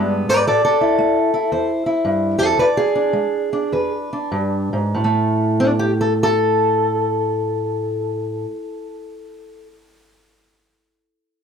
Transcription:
Already playing: G2 G#3 B3 D4
0.29 G#2 B4 D5
0.47 A2 A4 D5
0.65 A4
0.81 E4
0.98 A3
1.34 E4
1.52 E2 C5
1.86 E4
2.05 G2
2.38 F2 A4 D5
2.58 E2 B4 D5
2.77 G#4
2.95 D4
3.13 G#3
3.53 D4
3.72 E2 B4
4.13 D4
4.32 G2
4.73 G#2
4.95 A2
5.04 A3
5.60 D4
5.79 G4
6.01 A4
6.23 A4

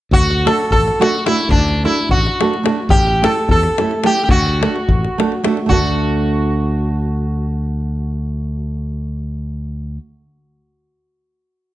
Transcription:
0.11 D2 F#4, davul low
0.30 davul high
0.45 A3 D4 F#4 A4, davul high
0.71 A1 A4, davul low
0.88 davul high
0.99 A3 D4 F#4 A4, davul high
1.15 davul high
1.26 A3 D4 E4 F#4 A4, davul high
1.49 D2 D4, davul low
1.68 davul high
1.84 A3 D4 E4 F#4 A4
2.09 A1 F#4, davul low
2.26 davul high
2.40 A3 D4 F#4 A4, davul high
2.54 davul high
2.63 A3 D4 F#4 A4, davul high
2.89 A1 G4, davul low
3.07 davul high
3.22 A3 C#4 E4 A4, davul high
3.49 E2 A4, davul low
3.63 davul high
3.78 A3 C#4 E4 A4, davul high
3.91 davul high
4.04 A3 C#4 E4 G4 A4, davul high
4.23 G4
4.29 D2 F#4, davul low
4.46 davul high
4.61 A3 D4 F#4 A4, davul high
4.76 davul high
4.89 A1, davul low
5.04 davul high
5.18 A3 D4 F#4 A4, davul high
5.32 davul high
5.44 A3 D4 F#4 A4, davul high
5.57 davul high
5.66 D2 A3 D4 F#4, davul low
5.71 F#4 A4

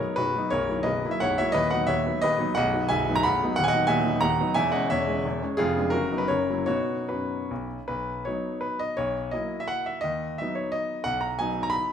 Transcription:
Already playing: A#4 C#5
0.00 F#3 B3 D#4
0.16 B0 B1 F#4 B4
0.36 F#3 B3 D#4
0.50 B0 B1 A#4 C#5
0.69 F#3 A#3 E4
0.83 B0 B1 B4 D#5
1.05 F#3 A#3 E4
1.11 E5
1.20 B0 B1 C#5 F#5
1.38 F#3 A#3 E4 C#5 E5
1.52 D#1 D#2 B4 D#5
1.71 F#3 B3 D#4 D#5 F#5
1.87 D#1 D#2 C#5 E5
2.06 F#3 B3 D#4
2.22 D#1 D#2 B4 D#5
2.38 F#3 B3 D#4
2.55 B0 B1 D#5 F#5
2.74 F#3 B3 D#4
2.89 B0 B1 E5 G#5
3.09 F#3 B3 D#4
3.15 A#5
3.23 B0 B1 F#5 B5
3.44 F#3 B3 D#4
3.56 D#1 D#2 F#5
3.64 G#5
3.68 D#5 F#5
3.73 F#3 B3 D#4
3.87 D#1 D#2 E5 G#5
4.06 F#3 B3 D#4
4.21 D#1 D#2 F#5 A#5
4.41 F#3 B3 D#4
4.54 E1 E2 E5 G#5
4.72 G#3 C#4 D#5 F#5
4.90 E1 E2 C#5 E5
5.07 G#3 C#4
5.25 E1 E2
5.42 G#3 C#4
5.57 F1 F2 F4 G#4
5.76 G#3 B3 D4
5.90 F#1 F#2 F#4 A#4
6.11 F#3 B3 D#4
6.18 B4
6.28 F#1 F#2 A#4 C#5
6.50 F#3 A#3 E4
6.66 B2 B3 D#4 F#4 C#5
7.09 F#2 F#4 B4
7.51 B1
7.88 B1 B4
8.25 F#3 B3 D#4 C#5
8.61 B4
8.79 D#5
8.97 B1 C#5
9.31 F#3 A#3 E4 D#5
9.60 E5
9.68 F#5
9.86 E5
10.01 D#2 D#5
10.38 F#3 B3 D#4 E5
10.55 C#5
10.72 D#5
11.04 B1 F#5
11.21 A#5
11.39 F#3 B3 D#4 G#5
11.63 A#5
11.70 B5

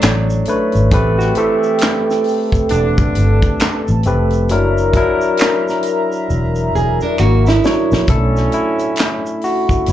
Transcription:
Already playing: F#3 D4
0.01 A1, finger snap, snare, clap, closed hi-hat, shaker
0.30 shaker
0.45 A3 D4 C#5, closed hi-hat, shaker
0.49 B4
0.72 G#1, closed hi-hat, shaker
0.91 A1 A3 C4 G4 A4 B4 G5, kick, closed hi-hat, shaker
1.19 F#3 F#4, snare, shaker
1.35 E3 A3 C4 E4 G4 A4, closed hi-hat, shaker
1.63 shaker
1.78 finger snap, closed hi-hat, shaker
1.83 snare, clap
2.10 snare, shaker
2.24 open hi-hat
2.28 shaker
2.52 kick, closed hi-hat, shaker
2.69 E1 D3 D4 A5, closed hi-hat, shaker
2.98 kick, shaker
3.15 G1, closed hi-hat, shaker
3.42 kick, shaker
3.60 finger snap, snare, clap, closed hi-hat, shaker
3.88 A1, shaker
4.03 F1 A3 C4 G4, closed hi-hat, shaker
4.07 B4
4.30 closed hi-hat, shaker
4.49 F#1 F#3 D4 E4 A#4 E5 A#5, closed hi-hat, shaker
4.78 shaker
4.93 F#3 D4 E4 A#4, kick, closed hi-hat, shaker
5.21 shaker
5.37 finger snap, closed hi-hat, shaker
5.42 snare, clap
5.68 snare, shaker
5.83 closed hi-hat, shaker
6.12 shaker
6.30 E1, shaker
6.55 shaker
6.75 E1 G#4, shaker
7.01 D4 A#4, shaker
7.18 G#1 A#3 F#4, finger snap, shaker
7.46 G#3 E4, snare, shaker
7.64 F#3 D4 E4 C#5, snare, shaker
7.91 A#1, snare, shaker
8.08 B1 A2 F#3 A3 C#4 D4 E4 A4, kick, closed hi-hat, shaker
8.36 snare, shaker
8.52 E4, closed hi-hat, shaker
8.79 closed hi-hat, shaker
8.96 finger snap, closed hi-hat, shaker
9.00 snare, clap
9.26 shaker
9.41 F#4, open hi-hat, shaker
9.69 kick, closed hi-hat, shaker
9.86 F#1 C#3 F#3 A3 B3 E4, closed hi-hat, shaker

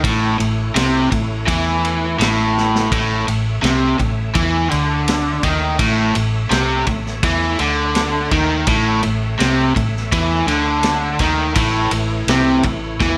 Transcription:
0.04 A1 A2 A3 E4 C#5, kick, ride
0.39 A1 A2, ride
0.75 C2 C3, snare, ride
1.11 A1 A2, kick, ride
1.47 E2 E3, kick, ride
1.85 ride
2.19 A1 A2, snare, ride
2.57 snare
2.75 snare
2.91 A1 A2 A3 C#5 E5, kick, ride
3.28 A1 A2, ride
3.63 C2 C3, snare, ride
3.99 A1 A2, kick, ride
4.35 E2 E3, kick, ride
4.71 D2 D3, ride
5.08 snare, ride
5.43 D#2 D#3, kick, ride
5.79 A1 A2 A3 C#5 E5, kick, ride
6.15 A1 A2, ride
6.50 C2 C3, snare, ride
6.87 A1 A2, kick, ride
7.06 snare
7.23 E2 E3, kick, ride
7.59 D2 D3, ride
7.95 snare, ride
8.31 D#2 D#3, kick, ride
8.67 A1 A2 A3 C#5 E5, kick, ride
9.03 A1 A2, ride
9.39 C2 C3, snare, ride
9.75 A1 A2, kick, ride
9.96 snare
10.12 E2 E3, kick, ride
10.47 D2 D3, ride
10.83 snare, ride
11.19 D#2 D#3, kick, ride
11.55 A1 A2 E3 A3 E4 C#5, kick, ride
11.91 A1 A2, ride
12.27 C2 C3, snare, ride
12.63 A1 A2, kick, ride
13.00 E2 E3, kick, snare

